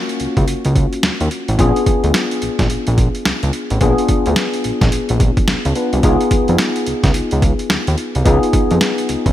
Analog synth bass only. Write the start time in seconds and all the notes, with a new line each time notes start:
0.21 C#2
0.37 C#2
0.48 C#2
0.65 C#2
1.04 D#2
1.21 D#2
1.49 A1
1.59 A#1
2.04 D2
2.43 A#1
2.59 A#1
2.71 A#1
2.88 A#1
3.26 C#2
3.43 C#2
3.71 A1
3.81 A#1
4.27 D2
4.65 A#1
4.82 A#1
4.93 A#1
5.10 A#1
5.48 C#2
5.65 C#2
5.93 C2
6.04 C#2
6.49 F2
6.87 C#2
7.04 C#2
7.15 C#2
7.32 C#2
7.71 D#2
7.88 D#2
8.16 C2
8.26 C#2
8.71 F2
9.10 C#2
9.26 C#2